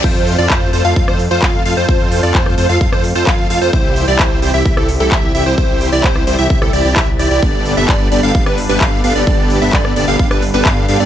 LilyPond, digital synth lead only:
\new Staff \with { instrumentName = "Digital synth lead" } { \time 4/4 \key c \major \tempo 4 = 130 c''8. d''16 c''8 c''16 f''16 f''16 c''16 r16 c''16 f''8 f''16 c''16 | c''8. d''16 c''8 c''16 f''16 f''16 c''16 r16 c''16 f''8 f''16 c''16 | c''8. d''16 c''8 c''16 e''16 e''16 a'16 r16 a'16 e''8 e''16 c''16 | c''8. d''16 c''8 c''16 e''16 e''16 a'16 d''16 d''16 e''16 r16 d''16 d''16 |
r8. e''16 d''8 d''16 f''16 f''16 b'16 r16 b'16 f''8 f''16 d''16 | d''8. e''16 d''8 d''16 f''16 f''16 b'16 r16 b'16 f''8 f''16 d''16 | }